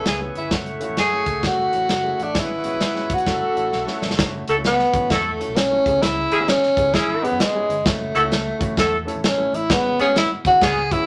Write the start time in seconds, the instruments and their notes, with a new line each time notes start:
Already playing: horn section B4 C#5 E5, tonewheel organ B4 E5 G#5 C#6
0.05 fingered electric bass C#2, tenor saxophone G#4, snare, closed hi-hat
0.19 grand piano B3 C#4 E4 G#4
0.35 fingered electric bass G1, tenor saxophone E4, closed hi-hat
0.50 fingered electric bass F#1, grand piano A3 C#4 E4 F#4, tonewheel organ A3 F#5 C#6, horn section A3 F#4 C#5, kick, snare, closed hi-hat
0.66 closed hi-hat
0.80 grand piano A3 C#4 E4 F#4, closed hi-hat
0.89 fingered electric bass A1
0.97 fingered electric bass F#2, tenor saxophone G#4, snare, closed hi-hat
1.12 grand piano A3 C#4 E4 F#4
1.26 fingered electric bass C#2, kick, closed hi-hat
1.42 fingered electric bass F#1, grand piano A3 C#4 E4 F#4, kick, snare, closed hi-hat
1.47 tenor saxophone F#4
1.72 fingered electric bass A1, grand piano A3 C#4 E4 F#4, closed hi-hat
1.89 fingered electric bass F#1, snare, closed hi-hat
2.03 grand piano A3 C#4 E4 G#4
2.20 fingered electric bass A1, tenor saxophone D4, closed hi-hat
2.35 fingered electric bass G#1, grand piano G#3 B3 C#4 F#4, horn section F#4 G#4 B4, tonewheel organ B4 G#5, kick, snare, closed hi-hat
2.39 tenor saxophone E4
2.64 grand piano G#3 B3 C#4 F#4, closed hi-hat
2.74 fingered electric bass G#1
2.80 fingered electric bass G#2, snare, closed hi-hat
2.94 grand piano G#3 B3 C#4 F#4, snare
3.10 fingered electric bass G#2, kick, closed hi-hat
3.14 tenor saxophone F#4
3.18 closed hi-hat
3.25 fingered electric bass F#1, grand piano A3 C#4 E4 F#4, horn section E4 F#4 A4, tonewheel organ A4 E5, kick, snare, closed hi-hat
3.42 muted fingered electric bass stroke
3.54 fingered electric bass A1, grand piano A3 C#4 E4 F#4, closed hi-hat
3.73 fingered electric bass B1, snare
3.86 grand piano A3 C#4 E4 F#4, snare
4.02 fingered electric bass A1, snare
4.10 fingered electric bass F#1, snare
4.17 fingered electric bass F#1, grand piano A3 C#4 E4 F#4, kick, snare, closed hi-hat
4.48 fingered electric bass C#2, horn section E4 F#4 A4, closed hi-hat
4.56 grand piano A3 C#4 E4 F#4
4.64 tenor saxophone B3, snare, closed hi-hat
4.79 snare
4.94 fingered electric bass A1, grand piano A3 C#4 E4 F#4, kick, closed hi-hat
5.10 fingered electric bass E2, tenor saxophone A3, horn section E4 F#4 A4, kick, snare, closed hi-hat
5.39 grand piano A3 C#4 E4 F#4, closed hi-hat
5.48 fingered electric bass B1
5.56 tenor saxophone C#4, snare, closed hi-hat
5.71 grand piano A3 C#4 E4 F#4
5.86 fingered electric bass C#2, grand piano B3 C#4 E4 G#4, kick, closed hi-hat
6.02 fingered electric bass C#2, tenor saxophone E4, snare, closed hi-hat
6.32 fingered electric bass G#1, horn section C#4 E4 G#4, closed hi-hat
6.39 grand piano B3 C#4 E4 G#4
6.48 tenor saxophone C#4, snare, closed hi-hat
6.63 snare
6.77 fingered electric bass C#2, grand piano B3 C#4 E4 G#4, kick, closed hi-hat
6.93 fingered electric bass G#1, horn section C#4 E4 G#4, tenor saxophone E4, kick, snare, closed hi-hat
7.22 grand piano B3 C#4 E4 G#4, tenor saxophone B3, closed hi-hat
7.32 fingered electric bass F#2
7.39 fingered electric bass G#2, tenor saxophone G#3, snare, closed hi-hat
7.53 grand piano B3 C#4 E4 G#4
7.69 fingered electric bass G1, closed hi-hat
7.85 fingered electric bass F#1, grand piano A3 C#4 E4 F#4, tenor saxophone A3, kick, snare, closed hi-hat
8.15 fingered electric bass C#2, horn section E4 F#4 A4, closed hi-hat
8.22 grand piano A3 C#4 E4 F#4
8.32 snare, closed hi-hat
8.59 fingered electric bass A1, grand piano A3 C#4 E4 F#4, kick, closed hi-hat
8.77 fingered electric bass E2, horn section E4 F#4 A4, kick, snare, closed hi-hat
9.05 grand piano A3 C#4 E4 A4, closed hi-hat
9.15 fingered electric bass A1
9.24 tenor saxophone C#4, snare, closed hi-hat
9.37 grand piano A3 C#4 E4 A4
9.53 fingered electric bass A1, tenor saxophone E4, closed hi-hat
9.70 fingered electric bass G#1, grand piano G#3 B3 C#4 F#4, tenor saxophone B3, kick, snare, closed hi-hat
9.99 fingered electric bass G#2, horn section B3 C#4 G#4, tenor saxophone C#4, closed hi-hat
10.07 grand piano G#3 B3 C#4 F#4
10.16 tenor saxophone E4, snare, closed hi-hat
10.45 fingered electric bass G#1, grand piano G#3 B3 C#4 E4, tenor saxophone F#4, kick, closed hi-hat
10.62 fingered electric bass C#2, horn section B3 C#4 G#4, tenor saxophone G#4, kick, snare, closed hi-hat
10.91 grand piano G#3 B3 C#4 F#4, tenor saxophone E4, kick, closed hi-hat
11.00 fingered electric bass G#1